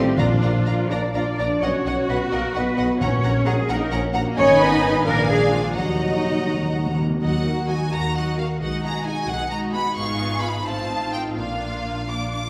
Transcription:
Already playing: A2 G3 A3 C4 D#4 F4 G4 C5
0.06 D#5
0.17 A#1 A#2 F3 D4 F4 D5 F5 A#5
0.30 F3
0.41 A#1 D4 D5 F5 A#5
0.54 F4
0.66 A#1 A#4 D5 F5 A#5
0.78 D5
0.90 A#1 D4 D5 F5 A#5
1.02 A#5
1.14 A#1 D4 F4 D5 F5 A#5
1.26 D5
1.38 A#1 D4 A#4 D5 F5 A#5
1.51 F4
1.62 B1 B2 C#4 F#4 C#5 D#5 F#5
1.74 F#3
1.85 B1 D#4 D#5 F#5
1.97 F#3
2.08 B1 B3 F#4 B4 D#5 F#5
2.20 D#5
2.32 B1 A#3 F#4 A#4 D#5 F#5
2.43 F#5
2.55 B1 B3 B4 D#5 F#5
2.66 F#4
2.78 B1 D#4 D#5 F#5
2.89 F#3
3.01 A#1 A#2 C#4 C#5 F#5 A#5
3.12 F#3
3.23 A#1 A#3 F#5 A#5
3.35 C#4
3.46 A#1 G#3 F#4 G#4 F#5 A#5
3.58 A#4
3.68 A#1 A#3 D#4 A#4 C#5 F#5 A#5
3.81 F#5
3.91 A#1 C#4 C#5 F#5 A#5
4.03 A#4
4.13 A#1 A#3 F#4 F#5 A#5
4.26 C#4
4.36 G#1 G#2 C#4 D#4 C#5 D#5 G#5 B5
4.49 D#3
4.60 B3 B4
4.71 D#4
4.83 G#4
4.94 B4
5.06 A#1 A#2 A#3 D4 A#4 D5 F5 G#5
5.17 F3
5.29 G#3 G#4
5.40 D4
5.52 F3 F4
5.64 G#4
5.76 D#2 D#3 F#3 D#4 F#4 D#5 F#5 A#5
5.85 D#3
5.89 D#3 F#3
6.00 D#3 D#4
6.08 D#3
6.13 D#3 F#4
6.24 D#3 D#4
6.31 D#3
6.38 D#3
6.46 D#3 F#5
6.54 D#3
6.61 D#3 D#5
6.70 D#3 F#5
6.78 D#3
6.85 D#3 D#5
6.94 D#3 F#4
7.01 D#3
7.09 D#3 D#4
7.21 D#2 D#3 F#3 D#4 F#4 D#5 F#5
7.45 A#3 D#4 F#4 A#4 F#5
7.68 F#3 D#4 F#4 D#5 G#5
7.92 D#2 A#3 D#4 F#4 A#4 F#5 A#5
8.14 F#3 D#4 F#4 D#5 F#5
8.38 A#3 D#4 F#4 A#4 F5 F#5
8.60 B1 B2 G#3 D#4 F#4 D#5 F#5
8.83 G#3 B3 F#4 G#4 F#5 A#5
9.05 G#3 D#4 F#4 D#5 G#5
9.28 B1 B3 F#4 G#4 F#5
9.50 G#3 D#4 F#4 D#5 A#5
9.73 G#3 B3 F#4 G#4 F#5 B5
9.95 G#1 G#2 B3 D#4 F4 G#4 F5 C#6
10.18 B3
10.41 D#4 F4 B5
10.65 A1 A2 C4 D#4 F4 F5 A5
10.89 C4
11.13 D#4 F4 G5
11.36 A#1 A#2 A#3 D4 F4 F5
11.61 A#3
11.85 D4
12.08 A#3 D4 F4 F5 D6
12.32 D4 D6

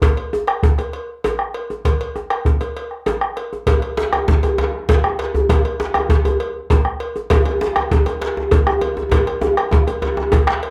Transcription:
0.02 bombo low, cowbell, djembe slap, djembe bass
0.17 cowbell
0.33 djembe tone
0.47 bombo rim, cowbell
0.63 bombo low, djembe slap, djembe bass
0.78 bombo rim, cowbell, djembe tone
0.93 cowbell, djembe slap
1.24 cowbell, djembe slap, djembe tone, djembe bass
1.39 bombo rim
1.54 cowbell
1.70 djembe tone
1.85 bombo low, cowbell, djembe slap, djembe bass
2.01 cowbell
2.16 bombo rim, djembe tone
2.30 bombo rim, cowbell, djembe slap
2.45 bombo low, djembe slap, djembe bass
2.61 cowbell, djembe slap, djembe tone
2.77 cowbell
2.91 bombo rim
3.06 bombo rim, cowbell, djembe slap, djembe tone, djembe bass
3.21 bombo rim, djembe slap
3.36 bombo rim, cowbell, djembe slap
3.53 djembe tone
3.67 bombo low, cowbell, djembe slap, djembe tone, djembe bass
3.82 cowbell
3.97 djembe slap, djembe tone
4.13 bombo rim, cowbell, djembe tone
4.28 bombo low, djembe slap, djembe bass
4.43 bombo rim, cowbell, djembe tone, djembe bass
4.58 cowbell, djembe slap, djembe tone
4.89 bombo low, cowbell, djembe slap, djembe tone, djembe bass
5.04 bombo rim, djembe tone
5.19 cowbell, djembe slap
5.35 djembe tone, djembe bass
5.49 bombo low, cowbell, djembe slap, djembe tone, djembe bass
5.65 cowbell
5.80 djembe slap, djembe tone
5.94 bombo rim, cowbell, djembe tone
6.09 bombo low, djembe slap, djembe bass
6.25 cowbell, djembe tone, djembe bass
6.40 cowbell, djembe slap
6.70 bombo low, cowbell, djembe slap, djembe tone, djembe bass
6.85 bombo rim
7.00 cowbell
7.16 djembe tone
7.30 bombo low, cowbell, djembe slap, djembe tone, djembe bass
7.45 cowbell, djembe tone
7.61 djembe slap, djembe tone
7.76 bombo rim, cowbell, djembe tone
7.91 bombo low, djembe slap, djembe tone, djembe bass
8.06 bombo rim, cowbell, djembe tone
8.21 cowbell, djembe slap
8.37 djembe tone
8.51 bombo low, cowbell, djembe slap, djembe tone, djembe bass
8.67 bombo rim, djembe tone
8.81 cowbell, djembe tone
8.97 djembe tone
9.11 bombo low, cowbell, djembe slap, djembe tone, djembe bass
9.27 bombo rim, cowbell
9.41 bombo rim, djembe slap, djembe tone
9.57 bombo rim, cowbell, djembe slap
9.71 bombo low, djembe slap, djembe tone
9.87 bombo rim, cowbell, djembe slap, djembe tone
10.02 cowbell, djembe tone
10.17 bombo rim, djembe slap, djembe tone
10.32 bombo rim, bombo low, cowbell, djembe slap, djembe tone, djembe bass
10.47 bombo rim, djembe slap
10.63 cowbell

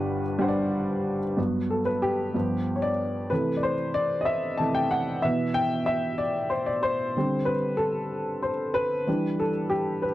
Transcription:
Already playing: G1 G2 G3 B3 D4 G4 B4 F#5
0.39 G3 D4 C5 F#5
0.48 D5
1.37 G2 F#3 B3
1.70 A4
1.85 B4
2.02 G4
2.34 G2 F3 B3
2.76 C#5
2.82 D5
3.30 C3 E3 A3 B4
3.57 D5
3.63 C5
3.94 D5
4.21 D#5
4.25 E5
4.58 C3 E3 A3 A5
4.75 G5
4.91 F#5
5.22 B2 E3 B3 E5
5.54 G5
5.86 E5
6.18 D5
6.50 C5
6.66 D5
6.83 C5
7.17 D3 G3 C4
7.45 B4
7.77 A4
8.43 C5
8.74 B4
9.07 E3 G3 D4
9.40 A4
9.70 G4
10.02 B4

